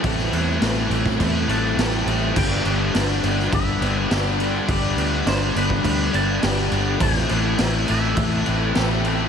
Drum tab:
CC |x-x-x-x-x-x-x-x-|x-x-x-x-x-x-x-x-|x-x-x-x-x-x-x-x-|x-x-x-x-x-x-x-x-|
SD |-o--o--o----o---|-o--o--o----o---|----o-------o---|-o--o-------o---|
BD |o------oo-------|o-------o-------|o------oo-------|o-------o-------|